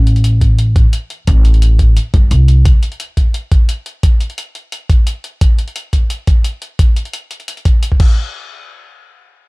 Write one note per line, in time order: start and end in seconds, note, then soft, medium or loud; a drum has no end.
0.00 0.83 A1 medium
0.07 closed hi-hat medium
0.16 closed hi-hat soft
0.24 closed hi-hat medium
0.41 kick medium
0.41 closed hi-hat medium
0.59 closed hi-hat medium
0.76 kick loud
0.76 closed hi-hat medium
0.93 closed hi-hat medium
1.10 closed hi-hat medium
1.27 1.95 A1 medium
1.27 kick loud
1.27 closed hi-hat medium
1.45 closed hi-hat medium
1.54 closed hi-hat soft
1.62 closed hi-hat medium
1.79 kick medium
1.79 closed hi-hat medium
1.97 closed hi-hat medium
2.14 2.29 G1 medium
2.14 kick loud
2.14 closed hi-hat medium
2.31 2.64 C2 medium
2.31 closed hi-hat medium
2.48 closed hi-hat medium
2.65 kick loud
2.65 closed hi-hat medium
2.83 closed hi-hat medium
2.92 closed hi-hat soft
3.00 closed hi-hat medium
3.17 kick medium
3.17 closed hi-hat medium
3.34 closed hi-hat medium
3.52 kick loud
3.52 closed hi-hat medium
3.69 closed hi-hat medium
3.86 closed hi-hat medium
4.03 kick loud
4.03 closed hi-hat medium
4.20 closed hi-hat medium
4.30 closed hi-hat soft
4.38 closed hi-hat medium
4.55 closed hi-hat medium
4.72 closed hi-hat medium
4.90 kick loud
4.90 closed hi-hat medium
5.07 closed hi-hat medium
5.24 closed hi-hat medium
5.41 kick loud
5.41 closed hi-hat medium
5.59 closed hi-hat medium
5.68 closed hi-hat soft
5.76 closed hi-hat medium
5.93 kick medium
5.93 closed hi-hat medium
6.10 closed hi-hat medium
6.27 kick medium
6.27 closed hi-hat medium
6.44 closed hi-hat medium
6.62 closed hi-hat medium
6.79 kick loud
6.79 closed hi-hat medium
6.96 closed hi-hat medium
7.05 closed hi-hat soft
7.13 closed hi-hat loud
7.31 closed hi-hat medium
7.40 closed hi-hat soft
7.48 closed hi-hat medium
7.57 closed hi-hat soft
7.65 kick medium
7.65 closed hi-hat medium
7.83 closed hi-hat medium
7.92 kick medium
8.00 kick loud
8.00 crash medium